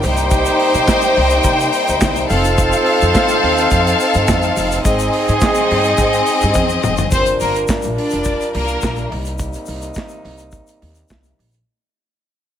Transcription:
0.02 C2 C3 G3 A#3 D#4 G4 C5 G5, open hi-hat, shaker
0.17 closed hi-hat, shaker
0.31 kick, closed hi-hat, shaker
0.45 closed hi-hat, shaker
0.59 open hi-hat
0.74 C3, closed hi-hat, shaker
0.88 kick, snare, clap, closed hi-hat, shaker
1.02 closed hi-hat, shaker
1.16 C2, open hi-hat
1.30 closed hi-hat, shaker
1.44 C3, kick, closed hi-hat, shaker
1.59 closed hi-hat, shaker
1.73 open hi-hat, shaker
1.87 D2, closed hi-hat, shaker
2.00 C2, kick, snare, clap, closed hi-hat, shaker
2.16 closed hi-hat, shaker
2.29 F1 F3 C4 F4 A4 C5 F5, open hi-hat, shaker
2.44 closed hi-hat, shaker
2.58 kick, closed hi-hat, shaker
2.72 closed hi-hat, shaker
2.86 open hi-hat
3.01 F2, closed hi-hat, shaker
3.14 kick, snare, clap, closed hi-hat, shaker
3.28 closed hi-hat, shaker
3.43 D#2, open hi-hat
3.57 closed hi-hat, shaker
3.71 F2, kick, closed hi-hat, shaker
3.87 closed hi-hat, shaker
4.00 open hi-hat, shaker
4.14 G2, closed hi-hat, shaker
4.28 F2, kick, snare, clap, closed hi-hat, shaker
4.42 closed hi-hat, shaker
4.57 F1, open hi-hat, shaker
4.71 closed hi-hat, shaker
4.85 G#1 G#3 C4 D#4 G#4 D#5, kick, closed hi-hat, shaker
4.99 closed hi-hat, shaker
5.13 open hi-hat
5.28 G#2, closed hi-hat, shaker
5.41 kick, snare, clap, closed hi-hat, shaker
5.55 closed hi-hat, shaker
5.71 G2, open hi-hat
5.84 closed hi-hat, shaker
5.97 G#2, kick, closed hi-hat, shaker
6.13 closed hi-hat, shaker
6.26 open hi-hat, shaker
6.41 G2, closed hi-hat, shaker
6.54 F2, kick, high tom, shaker
6.69 shaker
6.83 F1, mid tom, shaker
6.97 floor tom, shaker
7.11 G1 G3 C4 D4 F4 A#4 C5, kick, closed hi-hat, shaker
7.26 closed hi-hat, shaker
7.40 G1 A#3 A#4, open hi-hat, shaker
7.56 closed hi-hat, shaker
7.68 kick, snare, clap, closed hi-hat, shaker
7.82 A#1, closed hi-hat, shaker
7.97 D4 D5, open hi-hat
8.11 F1, closed hi-hat, shaker
8.24 kick, closed hi-hat, shaker
8.41 closed hi-hat, shaker
8.54 C2 A#3 A#4, open hi-hat
8.68 closed hi-hat, shaker
8.81 A#1, kick, snare, clap, closed hi-hat, shaker
8.96 closed hi-hat, shaker
9.10 C2 C3 A#3 D#4, open hi-hat
9.25 closed hi-hat, shaker
9.38 kick, closed hi-hat, shaker
9.53 closed hi-hat, shaker
9.66 C2, open hi-hat, shaker
9.82 closed hi-hat, shaker
9.94 kick, snare, clap, closed hi-hat, shaker
10.09 closed hi-hat, shaker
10.25 C2, open hi-hat
10.38 closed hi-hat, shaker
10.52 kick, closed hi-hat, shaker
10.67 closed hi-hat, shaker
10.82 D#2, open hi-hat
10.95 closed hi-hat, shaker
11.08 C2, kick, snare, clap, closed hi-hat, shaker
11.23 closed hi-hat, shaker
11.39 A#1, open hi-hat
11.51 closed hi-hat, shaker

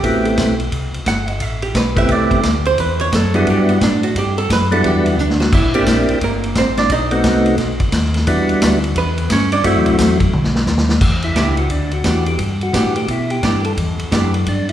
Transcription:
0.03 A1 A3 B3 C4 E4 F#4 G4, kick, ride
0.25 A4, ride
0.37 B1, kick, snare, hi-hat pedal, ride
0.60 ride
0.72 C2, kick, ride
0.92 C2, ride
1.06 G1 F#5, kick, snare, hi-hat pedal, ride
1.28 D#5, ride
1.40 A1 E5, kick, ride
1.62 G4, ride
1.74 B1 B4, kick, snare, hi-hat pedal, ride
1.96 A3 B3 C4 E4 G4 E5, kick, ride
2.08 C2 D5, kick, ride
2.31 C2, kick, ride
2.43 D2, kick, snare, hi-hat pedal, ride
2.65 C5, ride
2.78 E2 B4, kick, ride
2.99 C#5, ride
3.12 F#2 A4, kick, snare, hi-hat pedal, ride
3.34 G3 B3 D4 E4 F#4 G#4, ride
3.47 G2 G4, kick, ride
3.69 B3, ride
3.81 A2 D4, kick, snare, hi-hat pedal, ride
4.03 F#4, ride
4.15 G2 G4, kick, ride
4.38 A4, ride
4.49 F#2 B4, kick, snare, hi-hat pedal, ride
4.71 G3 B3 D4 E4 F#4 A4, ride
4.84 E2 G4, kick, ride
5.06 B3, ride
5.18 D2 D4, hi-hat pedal
5.30 snare
5.40 F#4, snare
5.52 C2 E4, kick, crash
5.63 A#1
5.74 G1 A#3 C4 D4 E4 G4, ride
5.86 A#1, kick, snare, hi-hat pedal, ride
6.08 A#1, ride
6.21 G1 A#3 A#4, kick, ride
6.43 ride
6.55 A1 C4 C5, kick, snare, hi-hat pedal, ride
6.77 D4 D5, snare, ride
6.89 B1 D#4 D#5, kick, ride
7.11 A3 B3 C4 D#4 F#4, ride
7.23 C2, kick, snare, hi-hat pedal, ride
7.46 ride
7.58 B1, kick, snare, ride
7.80 B1, kick, ride
7.92 D#2, kick, snare, hi-hat pedal, ride
8.04 snare
8.14 snare, ride
8.26 E2 G3 B3 D4 E4 F#4, kick, ride
8.48 E2, ride
8.61 D2, kick, snare, hi-hat pedal, ride
8.84 ride
8.95 E2 B3 B4, kick, ride
9.18 ride
9.30 G2 C#4 C#5, kick, snare, hi-hat pedal, ride
9.52 D4 D5, ride
9.64 F#2 F#3 A3 C4 E4 F#4 E5, kick, ride
9.75 E2
9.86 C2, ride
9.98 E2 F#3 A3 C4 E4 F#4, kick, snare, hi-hat pedal, ride
10.20 kick, ride
10.32 B1, mid tom
10.44 snare
10.55 snare
10.66 D#2, snare, hi-hat pedal
10.78 snare
10.89 snare
11.01 E2, kick, crash
11.22 E4, ride
11.35 C#2 E3 B3 D4 G4, kick, snare, hi-hat pedal, ride
11.57 F#4, ride
11.70 D2 D4, kick, ride
11.91 F#4, ride
12.04 E2 E3 B3 D4 G4, kick, snare, hi-hat pedal, ride
12.26 G4, ride
12.39 G2, kick, ride
12.61 F#4, ride
12.73 A2 E3 B3 D4 G4, kick, snare, hi-hat pedal, ride
12.96 G4, ride
13.08 B2 E4, kick, ride
13.30 G4, ride
13.43 G2 E3 B3 D4 G4, kick, snare, hi-hat pedal, ride
13.64 A4, ride
13.77 E2, kick, ride
13.98 E2, ride
14.12 F#2 E3 B3 D4 G4, kick, snare, hi-hat pedal, ride
14.34 ride
14.46 G2 D4, kick, ride
14.69 E4, ride

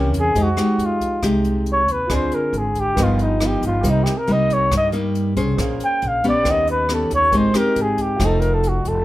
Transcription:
Already playing: C2 C3 E3 A#3 C#4 E4 G4 A#4 C#5
0.14 E2, kick, closed hi-hat
0.19 G#4
0.32 F2 G#3 D#4 G4 G#4, kick, closed hi-hat
0.36 C5 D#5
0.43 F#4
0.57 G#3 D#4 G4, cross-stick, closed hi-hat
0.78 F2, closed hi-hat
0.85 F4
1.01 kick, closed hi-hat
1.22 C2 C3 G#3 D#4 G4, kick, cross-stick, closed hi-hat
1.44 closed hi-hat
1.66 closed hi-hat
1.72 C#5
1.88 D#2 B4, kick, closed hi-hat
2.06 D2 D3 C4 F4 G#4, kick, cross-stick, closed hi-hat
2.11 G#4 C5 D5
2.15 C5
2.32 A#4, closed hi-hat
2.53 G#1, closed hi-hat
2.58 G#4
2.75 kick, closed hi-hat
2.80 G4
2.94 G1 G2 F3 B3 F4 A#4, kick, cross-stick, closed hi-hat
2.98 D#4 B4 D#5
3.03 F4
3.19 D#4, closed hi-hat
3.40 F3 B3 D#4, cross-stick, closed hi-hat
3.46 G4
3.62 G1, kick, closed hi-hat
3.66 F4
3.81 C2 C3 G3 A#3 D#4 G4 A#4, kick, closed hi-hat
3.85 C5 D#5
3.90 D#4
4.03 G4, cross-stick, closed hi-hat
4.18 A#4
4.27 C2 G3 A#3 D#4, closed hi-hat
4.32 D#5
4.50 C#5, kick, closed hi-hat
4.71 G2, kick, cross-stick, closed hi-hat
4.77 D#5
4.92 G3 A#3 D#4, closed hi-hat
5.15 closed hi-hat
5.37 C2 C#4 G#4 C5, kick, closed hi-hat
5.55 A#1 A#3 G#4 C5, kick, cross-stick, closed hi-hat
5.62 F5
5.80 closed hi-hat
5.84 G5
6.02 A#1, closed hi-hat
6.08 F5
6.24 B3 C#4 G4, kick, closed hi-hat
6.28 D5
6.43 D#2 D#3 G4 B4 C#5, kick, cross-stick, closed hi-hat
6.49 D#5 F#5
6.67 B4, closed hi-hat
6.89 B3 C#4 G4, cross-stick, closed hi-hat
6.94 A4
7.10 D#2 C#5, kick, closed hi-hat
7.29 G#1 G#3 C4 D#4 G4 A#4, kick, closed hi-hat
7.33 G4 C5 D#5
7.54 C4 D#4 G4 A#4, cross-stick, closed hi-hat
7.76 G#1, closed hi-hat
7.82 G#4
7.98 G4, kick, closed hi-hat
8.16 F1 F3 A3 D#4 F#4 A4, kick, cross-stick, closed hi-hat
8.21 F#4 C5 D#5
8.25 A4
8.40 A#4, closed hi-hat
8.54 A4
8.63 closed hi-hat
8.68 F#4
8.85 F1 A4, kick, closed hi-hat

